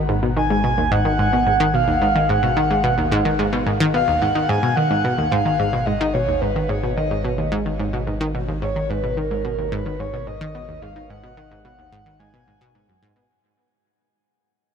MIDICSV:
0, 0, Header, 1, 4, 480
1, 0, Start_track
1, 0, Tempo, 550459
1, 78, Time_signature, 4, 2, 24, 8
1, 12859, End_track
2, 0, Start_track
2, 0, Title_t, "Soft synth lead"
2, 0, Program_c, 0, 80
2, 321, Note_on_c, 0, 80, 115
2, 802, Note_on_c, 0, 78, 117
2, 815, Note_off_c, 0, 80, 0
2, 1525, Note_on_c, 0, 77, 101
2, 1538, Note_off_c, 0, 78, 0
2, 2007, Note_on_c, 0, 78, 98
2, 2020, Note_off_c, 0, 77, 0
2, 2963, Note_off_c, 0, 78, 0
2, 3438, Note_on_c, 0, 77, 110
2, 3673, Note_on_c, 0, 78, 104
2, 3687, Note_off_c, 0, 77, 0
2, 3912, Note_on_c, 0, 80, 110
2, 3926, Note_off_c, 0, 78, 0
2, 4150, Note_on_c, 0, 78, 112
2, 4163, Note_off_c, 0, 80, 0
2, 4628, Note_on_c, 0, 77, 113
2, 4641, Note_off_c, 0, 78, 0
2, 5109, Note_on_c, 0, 75, 99
2, 5122, Note_off_c, 0, 77, 0
2, 5350, Note_on_c, 0, 73, 99
2, 5363, Note_off_c, 0, 75, 0
2, 5589, Note_on_c, 0, 71, 89
2, 5602, Note_off_c, 0, 73, 0
2, 5834, Note_on_c, 0, 73, 94
2, 5847, Note_off_c, 0, 71, 0
2, 6068, Note_off_c, 0, 73, 0
2, 6073, Note_on_c, 0, 75, 90
2, 6522, Note_off_c, 0, 75, 0
2, 7522, Note_on_c, 0, 73, 88
2, 7762, Note_on_c, 0, 71, 91
2, 7775, Note_off_c, 0, 73, 0
2, 8000, Note_on_c, 0, 70, 96
2, 8013, Note_off_c, 0, 71, 0
2, 8480, Note_on_c, 0, 71, 92
2, 8493, Note_off_c, 0, 70, 0
2, 8720, Note_on_c, 0, 73, 98
2, 8733, Note_off_c, 0, 71, 0
2, 8958, Note_on_c, 0, 75, 112
2, 8971, Note_off_c, 0, 73, 0
2, 9432, Note_on_c, 0, 77, 101
2, 9445, Note_off_c, 0, 75, 0
2, 9675, Note_off_c, 0, 77, 0
2, 9680, Note_on_c, 0, 78, 108
2, 10126, Note_off_c, 0, 78, 0
2, 10156, Note_on_c, 0, 78, 112
2, 10632, Note_on_c, 0, 80, 112
2, 10645, Note_off_c, 0, 78, 0
2, 11355, Note_off_c, 0, 80, 0
2, 12859, End_track
3, 0, Start_track
3, 0, Title_t, "Synth arpeggio sound"
3, 0, Program_c, 1, 84
3, 78, Note_on_c, 1, 44, 83
3, 155, Note_off_c, 1, 44, 0
3, 198, Note_on_c, 1, 47, 74
3, 275, Note_off_c, 1, 47, 0
3, 319, Note_on_c, 1, 51, 78
3, 433, Note_off_c, 1, 51, 0
3, 439, Note_on_c, 1, 44, 78
3, 553, Note_off_c, 1, 44, 0
3, 557, Note_on_c, 1, 47, 81
3, 635, Note_off_c, 1, 47, 0
3, 678, Note_on_c, 1, 39, 76
3, 756, Note_off_c, 1, 39, 0
3, 798, Note_on_c, 1, 44, 101
3, 876, Note_off_c, 1, 44, 0
3, 917, Note_on_c, 1, 51, 74
3, 995, Note_off_c, 1, 51, 0
3, 1036, Note_on_c, 1, 44, 84
3, 1115, Note_off_c, 1, 44, 0
3, 1158, Note_on_c, 1, 47, 77
3, 1236, Note_off_c, 1, 47, 0
3, 1277, Note_on_c, 1, 44, 74
3, 1324, Note_off_c, 1, 44, 0
3, 1396, Note_on_c, 1, 51, 102
3, 1444, Note_off_c, 1, 51, 0
3, 1517, Note_on_c, 1, 47, 79
3, 1595, Note_off_c, 1, 47, 0
3, 1636, Note_on_c, 1, 39, 77
3, 1715, Note_off_c, 1, 39, 0
3, 1759, Note_on_c, 1, 44, 75
3, 1805, Note_off_c, 1, 44, 0
3, 1879, Note_on_c, 1, 51, 77
3, 1956, Note_off_c, 1, 51, 0
3, 1999, Note_on_c, 1, 44, 86
3, 2076, Note_off_c, 1, 44, 0
3, 2117, Note_on_c, 1, 47, 75
3, 2195, Note_off_c, 1, 47, 0
3, 2238, Note_on_c, 1, 51, 77
3, 2352, Note_off_c, 1, 51, 0
3, 2357, Note_on_c, 1, 44, 76
3, 2472, Note_off_c, 1, 44, 0
3, 2474, Note_on_c, 1, 47, 83
3, 2554, Note_off_c, 1, 47, 0
3, 2597, Note_on_c, 1, 39, 75
3, 2675, Note_off_c, 1, 39, 0
3, 2716, Note_on_c, 1, 44, 101
3, 2795, Note_off_c, 1, 44, 0
3, 2836, Note_on_c, 1, 51, 74
3, 2914, Note_off_c, 1, 51, 0
3, 2957, Note_on_c, 1, 44, 84
3, 3035, Note_off_c, 1, 44, 0
3, 3076, Note_on_c, 1, 47, 76
3, 3154, Note_off_c, 1, 47, 0
3, 3195, Note_on_c, 1, 44, 75
3, 3243, Note_off_c, 1, 44, 0
3, 3317, Note_on_c, 1, 51, 104
3, 3364, Note_off_c, 1, 51, 0
3, 3436, Note_on_c, 1, 47, 79
3, 3514, Note_off_c, 1, 47, 0
3, 3557, Note_on_c, 1, 39, 73
3, 3635, Note_off_c, 1, 39, 0
3, 3678, Note_on_c, 1, 44, 77
3, 3724, Note_off_c, 1, 44, 0
3, 3796, Note_on_c, 1, 51, 77
3, 3874, Note_off_c, 1, 51, 0
3, 3916, Note_on_c, 1, 44, 86
3, 3995, Note_off_c, 1, 44, 0
3, 4036, Note_on_c, 1, 47, 74
3, 4114, Note_off_c, 1, 47, 0
3, 4158, Note_on_c, 1, 51, 75
3, 4272, Note_off_c, 1, 51, 0
3, 4278, Note_on_c, 1, 44, 77
3, 4392, Note_off_c, 1, 44, 0
3, 4398, Note_on_c, 1, 47, 83
3, 4476, Note_off_c, 1, 47, 0
3, 4516, Note_on_c, 1, 39, 76
3, 4595, Note_off_c, 1, 39, 0
3, 4636, Note_on_c, 1, 44, 104
3, 4715, Note_off_c, 1, 44, 0
3, 4756, Note_on_c, 1, 51, 75
3, 4835, Note_off_c, 1, 51, 0
3, 4878, Note_on_c, 1, 44, 86
3, 4956, Note_off_c, 1, 44, 0
3, 4997, Note_on_c, 1, 47, 75
3, 5075, Note_off_c, 1, 47, 0
3, 5120, Note_on_c, 1, 44, 77
3, 5165, Note_off_c, 1, 44, 0
3, 5238, Note_on_c, 1, 51, 103
3, 5285, Note_off_c, 1, 51, 0
3, 5358, Note_on_c, 1, 47, 81
3, 5436, Note_off_c, 1, 47, 0
3, 5475, Note_on_c, 1, 39, 76
3, 5554, Note_off_c, 1, 39, 0
3, 5597, Note_on_c, 1, 44, 78
3, 5644, Note_off_c, 1, 44, 0
3, 5718, Note_on_c, 1, 51, 79
3, 5796, Note_off_c, 1, 51, 0
3, 5836, Note_on_c, 1, 44, 85
3, 5915, Note_off_c, 1, 44, 0
3, 5958, Note_on_c, 1, 47, 74
3, 6036, Note_off_c, 1, 47, 0
3, 6080, Note_on_c, 1, 51, 76
3, 6193, Note_off_c, 1, 51, 0
3, 6199, Note_on_c, 1, 44, 79
3, 6313, Note_off_c, 1, 44, 0
3, 6318, Note_on_c, 1, 47, 85
3, 6396, Note_off_c, 1, 47, 0
3, 6436, Note_on_c, 1, 39, 76
3, 6515, Note_off_c, 1, 39, 0
3, 6555, Note_on_c, 1, 44, 101
3, 6634, Note_off_c, 1, 44, 0
3, 6677, Note_on_c, 1, 51, 75
3, 6755, Note_off_c, 1, 51, 0
3, 6797, Note_on_c, 1, 44, 84
3, 6875, Note_off_c, 1, 44, 0
3, 6916, Note_on_c, 1, 47, 80
3, 6995, Note_off_c, 1, 47, 0
3, 7037, Note_on_c, 1, 44, 76
3, 7084, Note_off_c, 1, 44, 0
3, 7155, Note_on_c, 1, 51, 103
3, 7203, Note_off_c, 1, 51, 0
3, 7278, Note_on_c, 1, 47, 78
3, 7356, Note_off_c, 1, 47, 0
3, 7398, Note_on_c, 1, 39, 77
3, 7475, Note_off_c, 1, 39, 0
3, 7518, Note_on_c, 1, 44, 77
3, 7564, Note_off_c, 1, 44, 0
3, 7637, Note_on_c, 1, 51, 78
3, 7715, Note_off_c, 1, 51, 0
3, 7759, Note_on_c, 1, 44, 87
3, 7836, Note_off_c, 1, 44, 0
3, 7877, Note_on_c, 1, 47, 76
3, 7955, Note_off_c, 1, 47, 0
3, 7996, Note_on_c, 1, 51, 75
3, 8111, Note_off_c, 1, 51, 0
3, 8117, Note_on_c, 1, 44, 79
3, 8232, Note_off_c, 1, 44, 0
3, 8238, Note_on_c, 1, 47, 85
3, 8315, Note_off_c, 1, 47, 0
3, 8357, Note_on_c, 1, 39, 76
3, 8435, Note_off_c, 1, 39, 0
3, 8477, Note_on_c, 1, 44, 101
3, 8555, Note_off_c, 1, 44, 0
3, 8595, Note_on_c, 1, 51, 76
3, 8674, Note_off_c, 1, 51, 0
3, 8716, Note_on_c, 1, 44, 83
3, 8795, Note_off_c, 1, 44, 0
3, 8835, Note_on_c, 1, 47, 78
3, 8914, Note_off_c, 1, 47, 0
3, 8955, Note_on_c, 1, 44, 76
3, 9003, Note_off_c, 1, 44, 0
3, 9077, Note_on_c, 1, 51, 105
3, 9124, Note_off_c, 1, 51, 0
3, 9198, Note_on_c, 1, 47, 80
3, 9275, Note_off_c, 1, 47, 0
3, 9317, Note_on_c, 1, 39, 76
3, 9395, Note_off_c, 1, 39, 0
3, 9437, Note_on_c, 1, 44, 77
3, 9484, Note_off_c, 1, 44, 0
3, 9557, Note_on_c, 1, 51, 76
3, 9635, Note_off_c, 1, 51, 0
3, 9677, Note_on_c, 1, 44, 87
3, 9755, Note_off_c, 1, 44, 0
3, 9797, Note_on_c, 1, 47, 77
3, 9875, Note_off_c, 1, 47, 0
3, 9917, Note_on_c, 1, 51, 77
3, 10032, Note_off_c, 1, 51, 0
3, 10038, Note_on_c, 1, 44, 79
3, 10152, Note_off_c, 1, 44, 0
3, 10157, Note_on_c, 1, 47, 81
3, 10235, Note_off_c, 1, 47, 0
3, 10278, Note_on_c, 1, 39, 75
3, 10355, Note_off_c, 1, 39, 0
3, 10397, Note_on_c, 1, 44, 102
3, 10475, Note_off_c, 1, 44, 0
3, 10517, Note_on_c, 1, 51, 77
3, 10595, Note_off_c, 1, 51, 0
3, 10636, Note_on_c, 1, 44, 84
3, 10715, Note_off_c, 1, 44, 0
3, 10757, Note_on_c, 1, 47, 80
3, 10835, Note_off_c, 1, 47, 0
3, 10877, Note_on_c, 1, 44, 76
3, 10924, Note_off_c, 1, 44, 0
3, 10997, Note_on_c, 1, 47, 101
3, 11075, Note_off_c, 1, 47, 0
3, 11118, Note_on_c, 1, 44, 79
3, 11232, Note_off_c, 1, 44, 0
3, 11237, Note_on_c, 1, 42, 75
3, 11315, Note_off_c, 1, 42, 0
3, 11358, Note_on_c, 1, 44, 104
3, 11436, Note_off_c, 1, 44, 0
3, 11476, Note_on_c, 1, 47, 78
3, 11555, Note_off_c, 1, 47, 0
3, 12859, End_track
4, 0, Start_track
4, 0, Title_t, "Analog synth bass"
4, 0, Program_c, 2, 38
4, 0, Note_on_c, 2, 32, 88
4, 3893, Note_off_c, 2, 32, 0
4, 3917, Note_on_c, 2, 32, 91
4, 11573, Note_off_c, 2, 32, 0
4, 12859, End_track
0, 0, End_of_file